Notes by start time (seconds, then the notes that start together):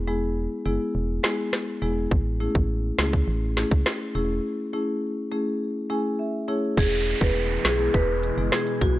Already playing: E1
0.07 G#3 B3 E4 G#4
0.66 F#1 G#3 B3 E4 G#4
0.95 E1
1.24 G#3 B3 E4 G#4, snare
1.53 cross-stick, snare
1.82 E1 G#3 B3 E4 G#4
2.11 A1, kick
2.40 A3 C#4 E4 G#4
2.55 A1, kick
2.99 C#2 A3 C#4 E4 G#4, snare
3.13 kick
3.28 A1
3.57 A3 C#4 E4 G#4, snare
3.71 C#2, kick
3.86 cross-stick, snare
4.15 E1 A3 C#4 E4 G#4
4.73 A3 C#4 E4 G#4
5.32 A3 C#4 E4 G#4
5.90 A3 C#4 E4 G#4 G#5
6.19 E5
6.48 A3 C#4 E4 G#4 C#5
6.77 E1 B2 E3 G#3 E4 G#4, kick, closed hi-hat, crash, downlifter
7.06 E4 G#4, closed hi-hat
7.21 E1 G#3 B3 E4 G#4 B4, kick
7.36 closed hi-hat
7.50 closed hi-hat
7.65 B1 E4 G#4, snare, closed hi-hat
7.79 G#3 B3 E4 G#4
7.94 E1 B4, kick, closed hi-hat
8.23 E4 G#4, closed hi-hat
8.38 F#1 G#3 B3 E4 G#4
8.52 G#4, cross-stick, snare, closed hi-hat
8.67 closed hi-hat
8.81 B1 G#3 B3 E4 F#4 G#4, kick, closed hi-hat